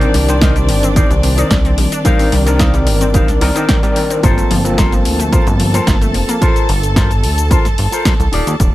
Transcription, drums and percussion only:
0.01 closed hi-hat, shaker
0.14 open hi-hat
0.29 closed hi-hat, shaker
0.41 kick, snare, closed hi-hat, shaker
0.56 closed hi-hat, shaker
0.69 open hi-hat
0.83 closed hi-hat, shaker
0.96 kick, closed hi-hat, shaker
1.11 closed hi-hat, shaker
1.23 open hi-hat
1.38 closed hi-hat, shaker
1.51 kick, snare, closed hi-hat, shaker
1.65 closed hi-hat, shaker
1.78 open hi-hat
1.92 closed hi-hat, shaker
2.05 kick, closed hi-hat, shaker
2.19 open hi-hat, shaker
2.32 open hi-hat
2.47 closed hi-hat, shaker
2.59 kick, snare, closed hi-hat, shaker
2.74 closed hi-hat, shaker
2.87 open hi-hat
3.01 closed hi-hat, shaker
3.14 kick, closed hi-hat, shaker
3.28 snare, closed hi-hat, shaker
3.41 open hi-hat
3.56 closed hi-hat, shaker
3.69 kick, snare, closed hi-hat, shaker
3.83 closed hi-hat, shaker
3.96 open hi-hat
4.10 closed hi-hat, shaker
4.23 kick, closed hi-hat, shaker
4.38 closed hi-hat, shaker
4.51 open hi-hat
4.65 closed hi-hat, shaker
4.78 kick, snare, closed hi-hat, shaker
4.92 closed hi-hat, shaker
5.05 open hi-hat
5.20 closed hi-hat, shaker
5.33 kick, closed hi-hat, shaker
5.47 closed hi-hat, shaker
5.60 open hi-hat
5.74 closed hi-hat, shaker
5.87 kick, snare, closed hi-hat, shaker
6.02 closed hi-hat, shaker
6.14 open hi-hat
6.29 closed hi-hat, shaker
6.42 kick, closed hi-hat, shaker
6.56 closed hi-hat, shaker
6.69 open hi-hat
6.83 closed hi-hat, shaker
6.96 kick, snare, closed hi-hat, shaker
7.11 closed hi-hat, shaker
7.24 open hi-hat
7.38 closed hi-hat, shaker
7.51 kick, closed hi-hat, shaker
7.65 snare, closed hi-hat, shaker
7.78 open hi-hat
7.92 closed hi-hat, shaker
8.05 kick, snare, closed hi-hat, shaker
8.20 closed hi-hat, shaker
8.33 open hi-hat
8.47 closed hi-hat, shaker
8.60 kick, closed hi-hat, shaker

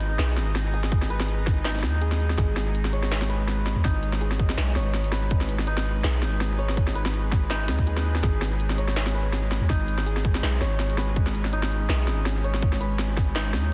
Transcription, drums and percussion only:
0.01 closed hi-hat
0.19 snare, closed hi-hat
0.37 snare, closed hi-hat
0.56 snare, closed hi-hat
0.74 closed hi-hat
0.84 snare
0.92 kick, closed hi-hat
1.02 snare
1.10 closed hi-hat
1.20 snare
1.28 closed hi-hat
1.47 kick, snare, open hi-hat
1.65 snare, closed hi-hat
1.70 snare
1.75 snare
1.79 snare
1.83 snare, open hi-hat
2.02 closed hi-hat
2.12 snare, open hi-hat
2.20 closed hi-hat
2.30 snare
2.38 kick, snare, closed hi-hat
2.57 snare, closed hi-hat
2.75 closed hi-hat
2.85 snare
2.93 closed hi-hat
3.03 snare
3.12 snare, closed hi-hat
3.22 snare
3.30 closed hi-hat
3.48 snare, closed hi-hat
3.66 snare, closed hi-hat
3.85 kick, snare, closed hi-hat
4.03 closed hi-hat
4.13 snare
4.21 closed hi-hat
4.31 snare
4.40 kick, open hi-hat
4.50 snare
4.58 snare, closed hi-hat
4.76 snare, open hi-hat
4.94 snare, closed hi-hat
5.04 open hi-hat
5.12 snare, closed hi-hat
5.31 kick, closed hi-hat
5.41 snare
5.49 closed hi-hat
5.59 snare
5.67 closed hi-hat
5.77 snare
5.86 closed hi-hat
6.04 snare, closed hi-hat
6.22 snare, closed hi-hat
6.41 snare, closed hi-hat
6.59 closed hi-hat
6.69 snare
6.77 kick, closed hi-hat
6.87 snare
6.96 closed hi-hat
7.06 snare
7.14 closed hi-hat
7.32 kick, snare, open hi-hat
7.50 snare, closed hi-hat
7.69 snare, open hi-hat
7.79 kick
7.87 closed hi-hat
7.97 snare, open hi-hat
8.05 closed hi-hat
8.15 snare
8.23 kick, snare, closed hi-hat
8.42 snare, closed hi-hat
8.60 closed hi-hat
8.70 snare
8.78 closed hi-hat
8.88 snare
8.96 snare, closed hi-hat
9.06 snare
9.15 closed hi-hat
9.33 snare, closed hi-hat
9.51 snare, closed hi-hat
9.70 kick, snare, closed hi-hat
9.88 closed hi-hat
9.98 snare
10.06 closed hi-hat
10.17 snare
10.25 kick, open hi-hat
10.35 snare
10.43 snare, closed hi-hat
10.61 snare, open hi-hat
10.80 snare, closed hi-hat
10.90 open hi-hat
10.98 snare, closed hi-hat
11.16 kick, closed hi-hat
11.27 snare
11.35 closed hi-hat
11.45 snare
11.53 closed hi-hat
11.63 snare
11.71 closed hi-hat
11.89 snare
12.08 snare, closed hi-hat
12.26 snare, closed hi-hat
12.44 closed hi-hat
12.54 snare
12.62 kick, closed hi-hat
12.73 snare
12.81 closed hi-hat
12.99 snare, closed hi-hat
13.17 kick, snare, open hi-hat
13.36 snare, closed hi-hat
13.54 snare, open hi-hat

